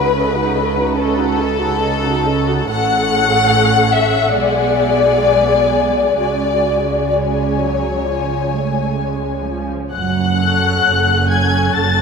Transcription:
Already playing: C#2 C#3 D#4 F#4 B4 F#5
0.13 C#4 A4 D#5
0.35 D#4 F#4 F#5
0.54 C#4 A4 D#5
0.76 D#4 F#4 F#5
0.97 C#4 A4 D#5
1.18 D#4 F#4 F#5
1.39 C#4 A4 D#5
1.58 D#4 F#4 F#5
1.79 C#4 A4 D#5
2.02 D#4 F#4 F#5
2.25 C#4 A4 D#5
2.47 D#4 F#4 F#5
2.68 A1 A2 C#4 A4 F#5
3.94 E5
4.35 B1 B2 G#3 G#4 D5 G#5
6.18 C#2 C#3 G#3 F#4 D5 G#5
7.10 G#3 D5
7.15 C#5 G#5
7.61 F#3
8.07 F3 G#5
8.54 A3
9.00 G#3
9.45 F3
9.92 F#1 F#2 F#5 F#6
10.37 C#4 A4
10.82 F#1 F#2
11.28 C#4 A4 G#5 G#6
11.73 F#1 F#2 A5 A6

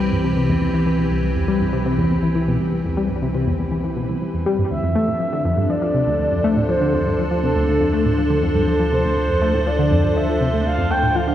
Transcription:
Already playing: C2 E3 C4 G4 B4
0.00 G3
0.12 G2
0.24 C3
0.37 C3
0.49 E2
0.62 E2
0.74 E3
0.86 E3
0.99 B2
1.11 C2
1.24 C2
1.36 E2
1.48 G3
1.61 G2
1.73 C3
1.86 C3
1.98 E2
2.11 E2
2.23 E3
2.35 E3
2.48 B2
2.60 C2
2.73 C2
2.85 E2
2.97 G3
3.10 G2
3.22 C3
3.35 C3
3.47 E2
3.59 E2
3.72 E3
3.84 E3
3.96 B2
4.09 C2
4.21 C2
4.34 E2
4.46 G3
4.59 G2
4.71 D2 F3 E5
4.83 F2
4.95 A3
5.05 A2 D4
5.17 F3 A4
5.33 D3
5.45 F2
5.57 G2
5.70 F3 C5 D5
5.82 F3
5.94 C3
6.07 D2
6.19 D2
6.32 F2
6.44 A3
6.56 A2
6.69 F3 C5
6.81 D3
6.94 F2
7.06 G2
7.19 F3
7.31 F3
7.43 C3 A4
7.56 D2
7.69 D2
7.81 F2
7.93 A3
8.06 A2
8.18 F3
8.30 D3
8.43 F2
8.55 G2
8.68 F3
8.80 F3
8.92 C3 C5
9.05 D2
9.17 D2
9.30 F2
9.42 A3
9.54 A2
9.67 F3 D5
9.79 D3
9.91 F2
10.04 G2
10.16 F3 E5
10.29 F3
10.41 C3
10.53 D2
10.66 D2 F5
10.78 F2
10.91 A3 G5
11.03 A2
11.15 F3 F5
11.27 D3

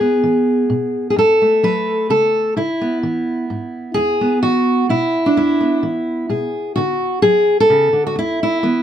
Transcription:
Already playing: E2 G#4
0.01 B3
0.24 E3
0.70 B2
1.10 G#4
1.16 F#2 A4
1.42 A3
1.63 F#3 B4
2.10 C#3 A4
2.57 C#3 E4
2.81 B3
3.03 E3
3.50 G#2
3.94 E2 G#4
4.21 B3
4.43 E3 F#4
4.89 B2 E4
5.26 D4
5.37 E2 E4
5.60 B3
5.83 E3
6.29 B2 G#4
6.76 D3 F#4
7.22 F#3 G#4
7.60 A4
7.70 C#3
7.93 D3
8.07 F#4
8.16 E2 E4
8.43 E4
8.63 E3 B3

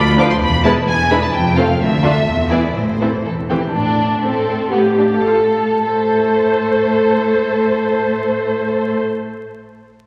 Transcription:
Already playing: D2 B5
0.17 F3 D4 F4 B4 D6
0.30 C6
0.41 E1 E2 B5
0.64 G#3 B3 E4 B4 A5
0.87 E1 E2 G#5
1.10 G#3 D4 E4 B4 B5
1.22 A5
1.33 F1 F2 G5
1.57 A3 C4 F4 A4 F5
1.81 D2 E5
2.02 A3 D4 F4 A4
2.27 E1 E2
2.50 E3 B3 E4 G#4 D5
2.76 A1 A2 C5
3.01 E3 C4 E4 A4
3.25 E1 E2 A4
3.49 E3 C4 G4
3.74 A2 D4
3.98 E5
4.22 A2 C4 A4
4.46 E5
4.71 A2 B3 G4 F5
4.98 D4 F5
5.12 A4
5.24 A2 F4
5.54 F5
5.84 A2 A3 A4 C5 E5

